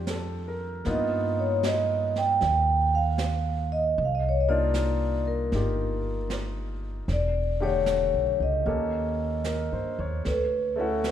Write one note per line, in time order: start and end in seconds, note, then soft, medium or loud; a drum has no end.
0.00 0.81 F2 medium
0.00 0.83 G3 soft
0.00 0.86 C4 soft
0.00 0.86 D4 soft
0.00 0.86 F4 soft
0.00 0.87 G4 soft
0.07 0.69 A4 soft
0.07 snare soft
0.07 hi-hat pedal soft
0.48 1.02 A#4 soft
0.85 2.38 G2 medium
0.85 3.97 A#3 soft
0.85 3.98 B3 soft
0.85 3.98 D#4 soft
0.85 3.98 F4 medium
0.85 1.40 D#5 medium
0.85 brush sweep soft
0.85 snare soft
1.39 1.63 C#5 medium
1.63 2.18 D#5 medium
1.63 snare soft
1.63 hi-hat pedal soft
2.16 2.97 G5 medium
2.16 snare soft
2.41 3.93 D#2 medium
2.41 brush sweep soft
2.41 snare soft
2.95 3.68 F5 medium
3.18 snare soft
3.18 hi-hat pedal soft
3.72 4.03 D#5 medium
3.96 5.49 C2 medium
3.96 brush sweep soft
4.05 4.15 F5 medium
4.15 4.26 D#5 medium
4.29 4.39 C#5 medium
4.40 4.50 D#5 medium
4.48 7.08 A#3 medium
4.48 7.09 D4 soft
4.48 5.51 D#4 soft
4.48 5.53 F4 medium
4.48 5.28 D5 medium
4.74 snare soft
4.74 hi-hat pedal soft
5.28 6.27 A#4 medium
5.52 7.04 G1 medium
5.52 7.08 D#4 soft
5.52 7.09 F4 soft
5.52 7.10 G4 soft
5.52 brush sweep soft
5.52 snare soft
6.30 snare soft
6.30 hi-hat pedal soft
7.08 8.09 E1 medium
7.08 brush sweep soft
7.08 snare soft
7.12 7.64 D5 medium
7.60 8.66 D3 soft
7.60 8.66 A3 soft
7.60 8.66 F#4 soft
7.60 8.65 G4 medium
7.60 8.36 C#5 medium
7.86 snare soft
7.86 hi-hat pedal soft
8.14 8.38 B1 soft
8.40 8.64 C#2 medium
8.40 9.96 D#5 medium
8.65 9.68 D#2 medium
8.65 10.25 A#3 soft
8.65 10.25 C#4 soft
8.65 10.26 G4 soft
8.65 10.26 A4 medium
8.65 brush sweep soft
9.44 9.94 A#4 soft
9.44 snare soft
9.44 hi-hat pedal soft
9.73 9.97 G2 soft
9.73 10.13 C5 soft
9.99 10.23 D#2 medium
9.99 10.40 C#5 soft
10.25 11.11 D2 medium
10.25 10.27 A4 medium
10.25 10.80 B4 medium
10.25 brush sweep soft
10.25 snare soft
10.76 11.11 A3 medium
10.76 11.11 C#4 soft
10.76 11.11 E4 soft
10.76 11.04 A4 medium
10.81 11.11 F#4 medium
11.04 11.11 B4 medium
11.04 snare soft
11.04 hi-hat pedal medium